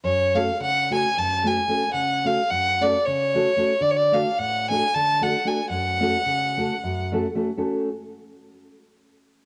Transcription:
<<
  \new Staff \with { instrumentName = "Violin" } { \time 7/8 \key fis \minor \tempo 4 = 111 cis''8 eis''8 fis''8 gis''8 a''8 gis''4 | fis''8 eis''8 fis''8 d''8 cis''4. | d''32 cis''32 d''16 eis''8 fis''8 gis''8 a''8 fis''8 gis''8 | fis''2~ fis''8 r4 |
r2. r8 | }
  \new Staff \with { instrumentName = "Nylon-string guitar" } { \time 7/8 \key fis \minor << { r8 <a cis' fis' a'>8 r8 <a cis' fis' a'>8 r8 <a cis' fis' a'>8 <a cis' fis' a'>8 | r8 <a cis' fis' a'>8 r8 <a cis' fis' a'>8 r8 <a cis' fis' a'>8 <a cis' fis' a'>8 | r8 <a d' fis' a'>8 r8 <a d' fis' a'>8 r8 <a d' fis' a'>8 <a d' fis' a'>8 | r8 <a cis' fis' a'>8 r8 <a cis' fis' a'>8 r8 <a cis' fis' a'>8 <a cis' fis' a'>8 |
<a cis' fis' a'>8 r2. | } \\ { fis,4 cis4 fis,4 r8 | cis4 fis,4 cis4 r8 | d4 a,4 d4 r8 | fis,4 cis4 fis,4 r8 |
r2. r8 | } >> }
>>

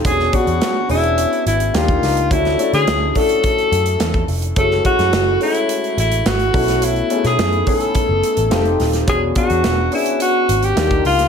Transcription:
<<
  \new Staff \with { instrumentName = "Alto saxophone" } { \time 4/4 \key e \mixolydian \tempo 4 = 106 gis'8 fis'4 e'4 e'8 eis'4 | e'8. gis'8~ gis'32 gis'32 a'2 r8 | a'8 fis'4 e'4 e'8 fis'4 | e'8. gis'8. a'2 r8 |
gis'8 fis'4 e'8 fis'8. g'8. eis'8 | }
  \new Staff \with { instrumentName = "Grand piano" } { \time 4/4 \key e \mixolydian <b cis' d' fis' gis'>8 <b cis' d' fis' gis'>8. r16 <b cis' d' fis' gis'>4. <ais d' dis' eis' g'>4 | <a cis' d' e' fis'>8 <a cis' d' e' a'>8. r16 <a cis' d' e' fis'>4. r4 | <gis a cis' e' fis'>8 <gis a cis' e' fis'>8. r16 <gis a cis' e' fis'>4. r8 <a b cis' e' fis'>8~ | <a b cis' e' fis'>8 <a b cis' dis' e' gis'>8. r16 <a b cis' e' gis''>4. <a c' ees' f' g'>4 |
<b cis' d' fis' gis'>8 <b cis' d' fis' gis'>8. r16 <b cis' d' fis' gis'>4. <ais d' dis' eis' g'>4 | }
  \new Staff \with { instrumentName = "Picked electric bass" } { \clef bass \time 4/4 \key e \mixolydian e,,8 r16 e,16 r8 e,,8. r16 gis,,8 dis,8 cis,8 | d,8 r16 d16 d,8 r4 fis,8 e,8 eis,,8 | fis,,8 r16 fis,16 fis,,8 r4 a,,8 gis,,8 b,,8~ | b,,8 r16 b,16 fis,8 r8. fis,,16 r16 a,,16 r8 ees,,8 |
e,,8 r16 e,16 e,,8 r4 gis,,8 dis,8 cis,8 | }
  \new DrumStaff \with { instrumentName = "Drums" } \drummode { \time 4/4 <hh bd>16 sn16 <hh bd>16 hh16 <hh sn>8 hho16 hh16 hh16 hh16 hh16 hh16 <hh sn>16 <hh bd>16 <hho sn>16 hh16 | <hh bd>16 <hh sn>16 hh16 <hh sn>16 <hh sn>8 <hho bd>16 hh16 <hh bd>16 hh16 hh16 hh16 <hh sn>16 <hh bd>16 hho16 hh16 | <hh bd>16 sn16 <hh bd>16 <hh sn>16 <hh sn>8 hho16 hh16 hh16 hh16 hh16 hh16 <hh sn>16 hh16 <hho bd>16 <hh sn>16 | hh16 hh16 hh16 <hh sn>16 <hh sn>16 hh16 <hho bd>16 hh16 <hh bd>8 hh16 hh16 <hh sn>16 hh16 <hho sn>16 <hh sn>16 |
<hh bd>8 <hh bd>16 hh16 <hh sn>8 hho16 hh16 hh8 hh16 hh16 <hh sn>16 <hh bd>16 hho16 <hh sn>16 | }
>>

